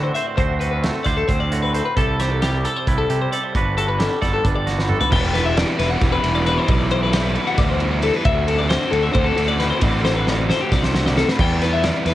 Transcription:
Already playing: A2 D3 A3 C4 F#4 C5
0.04 C5
0.14 C5 E5, closed hi-hat
0.26 D5
0.37 D2 D3 C4 F#4 C5, kick, closed hi-hat
0.60 F#4 B4, closed hi-hat
0.71 B4
0.83 A3 A4, snare, closed hi-hat
1.04 D2 C5 D5, kick, snare, closed hi-hat
1.17 A4
1.28 D2 C4 C5, kick, closed hi-hat
1.40 D5
1.52 A2 F#4, closed hi-hat
1.62 B4
1.73 A4 C5, closed hi-hat
1.85 B4
1.96 C2 C3 E4 G4 A4, kick, closed hi-hat
2.19 G4 C5, snare, closed hi-hat
2.31 A4
2.41 G3 G4, snare, closed hi-hat
2.64 A4, closed hi-hat
2.77 C5
2.87 C2 E4 B4, kick, closed hi-hat
2.98 A4
3.09 C3 G3 G4, closed hi-hat
3.22 C5
3.32 A4 D5, closed hi-hat
3.44 C5
3.55 G1 G2 D4 F#4 B4, kick, closed hi-hat
3.77 F#4 A4, closed hi-hat
3.88 B4
3.99 G3 A4, snare, closed hi-hat
4.21 G1 A4 D5, kick, snare, closed hi-hat
4.33 A4
4.44 G1 D4 B4, kick, closed hi-hat
4.55 D5
4.66 D3 F#4, snare, closed hi-hat
4.78 B4, snare
4.89 A4, mid tom
5.01 B4, floor tom
5.11 E1 E3 G3 B3 E4 G5, kick, crash
5.34 B4, snare, ride
5.46 E5
5.56 E3 G3 B3 E4 D5, snare, ride
5.79 E1 G3 B3 E4 B4, snare, ride
5.90 F#5
6.00 E1 E3 G3 B3 E4 D5, kick, snare, ride
6.12 B4
6.23 E1 G3 B3 E4, ride
6.35 D5
6.46 E3 G3 B3 E4 B4, ride
6.58 C5
6.67 B1 E3 G3 B3 E4 D5, kick, ride
6.91 C5, ride
7.03 B4
7.13 E3 G3 B3 E4 D5, snare, ride
7.35 G3 B3 E4 B4, ride
7.47 F#4
7.57 D2 E3 G3 B3 E4 D5, kick, snare, ride
7.69 C5
7.79 G3 B3 E4, ride
7.92 D5
8.02 E3 G3 B3 E4 A4, ride
8.14 B4
8.24 D2 D3 A3 C4 F#4 E5, kick, ride
8.47 A4, ride
8.58 D5
8.69 D3 A3 C4 F#4 C5, snare, ride
8.91 D2 A3 C4 F#4 A4, ride
9.03 E5
9.13 D2 D3 A3 C4 F#4 C5, kick, ride
9.24 A4
9.37 D2 A3 C4 F#4, ride
9.48 D5
9.59 D3 A3 C4 F#4 B4, snare, ride
9.70 C5
9.81 A1 D3 A3 C4 F#4 D5, kick, ride
10.05 C5, snare
10.16 B4
10.27 D3 A3 C4 F#4 D5, snare
10.48 A3 C4 F#4 C5, snare
10.61 G4
10.72 C2 D3 A3 C4 F#4 D5, kick, snare
10.83 C5, snare
10.93 A3 C4 F#4, snare
11.06 D5, snare
11.16 D3 A3 C4 F#4 A4, snare
11.28 B4, snare
11.39 E2 E3 G3 B3 E4 G5, kick, crash
11.62 B4, snare, ride
11.73 E5
11.83 E3 G3 B3 E4 D5, snare, ride
12.05 E2 G3 B3 E4 B4, snare, ride

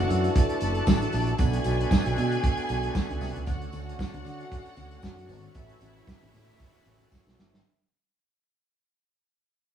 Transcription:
Already playing: E3 A3 D4 F#4 F#5
0.09 F#2, closed hi-hat, tambourine
0.24 closed hi-hat
0.35 A4 A5, kick, closed hi-hat
0.49 closed hi-hat
0.61 F#1, closed hi-hat, tambourine
0.75 closed hi-hat
0.87 A1, kick, snare, tambourine
1.02 closed hi-hat
1.12 A#1, open hi-hat, tambourine
1.27 closed hi-hat
1.38 B1 D3 B3 F#4 G#4 G#5, kick, closed hi-hat, tambourine
1.53 closed hi-hat
1.64 B1, closed hi-hat, tambourine
1.81 closed hi-hat
1.91 kick, snare, tambourine
2.06 B1, closed hi-hat
2.16 B2, closed hi-hat, tambourine
2.32 closed hi-hat
2.43 kick, closed hi-hat, tambourine
2.57 closed hi-hat
2.69 B1, closed hi-hat, tambourine
2.83 closed hi-hat
2.95 kick, snare, tambourine
3.10 C#2, closed hi-hat
3.21 C2, snare, open hi-hat, tambourine
3.35 C#2, closed hi-hat
3.46 D2 C#4 F#4 F#5, kick, closed hi-hat, tambourine
3.62 closed hi-hat
3.72 D2, closed hi-hat, tambourine
3.89 closed hi-hat
3.99 kick, snare, tambourine
4.14 D2, closed hi-hat
4.25 D3, closed hi-hat, tambourine
4.40 closed hi-hat
4.51 kick, closed hi-hat, tambourine
4.66 closed hi-hat
4.76 D2, closed hi-hat, tambourine
4.91 closed hi-hat
5.02 F#2, kick, snare, tambourine
5.19 closed hi-hat
5.29 G#1, open hi-hat, tambourine
5.43 closed hi-hat
5.55 A1 E3 A3 E4 E5, kick, closed hi-hat, tambourine
5.69 closed hi-hat
5.81 A1, closed hi-hat, tambourine
5.97 closed hi-hat
6.07 kick, snare, tambourine
6.22 A1, closed hi-hat
6.34 A2, closed hi-hat, tambourine
6.48 closed hi-hat
6.60 kick, closed hi-hat
6.74 closed hi-hat
6.86 A1, closed hi-hat, tambourine
7.00 closed hi-hat
7.12 kick, snare, tambourine
7.27 B1, snare
7.38 G1, snare, tambourine
7.53 G#1, snare

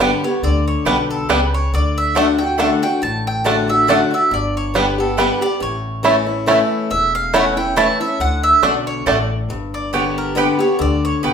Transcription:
0.00 D3 G3 B3 D4 G4 B4 D5 G5
0.24 B3 G4 C#5
0.42 D2 D3 D5
0.68 C#5
0.85 B1 B2 G3 B3 D4 G4 B4 D5 G5
1.10 A4
1.29 C#2 C#3 G3 B3 D4 G4 B4 D5 G5
1.54 C#5
1.72 D2 D3 D5
1.98 E5
2.15 D3 A3 D4 F#4 D5 F#5 A5
2.38 D4 F#4 G5
2.58 D3 A3 D4 F#4 D5 F#5 A5
2.82 D4 F#4 G5
3.02 A1 A2 A5
3.27 G5
3.44 D3 A3 D4 F#4 D5 F#5 A5
3.68 D4 F#4 E5
3.87 D3 A3 D4 F#4 D5 F#5 A5
4.11 D4 F#4 E5
4.31 G1 G2 D5
4.57 C#5
4.74 D3 G3 B3 D4 G4 B4 D5 G5
4.98 B3 G4 A4
5.17 D3 G3 B3 D4 G4 B4 D5 G5
5.41 B3 G4 D5
5.60 A1 A2 C#5
6.03 E3 A3 C#4 E4 C#5 A5
6.26 C#4 E4
6.46 E3 A3 C#4 E4 C#5 A5
6.90 E1 E2 E5
7.15 F5
7.33 E3 A3 C#4 E4 C#5 F#5 A5
7.57 C#4 E4 G5
7.76 E3 A3 C#4 E4 C#5 A5
8.00 C#4 E4 E5
8.19 D2 D3 F#5
8.43 E5
8.62 B1 B2 A3 D4 F#4 D5 A5
8.87 C#5
9.06 A1 A2 A3 D4 F#4 D5 A5
9.49 G1 G2
9.74 D5
9.93 D3 G3 B3 G4 C#5 D5 G5
10.18 A#4
10.35 D3 G3 B3 G4 B4 D5 G5
10.59 B3 G4 C#5
10.79 D2 D3 D5
11.05 C#5
11.23 B1 B2 B3 G4 B4 D5 G5

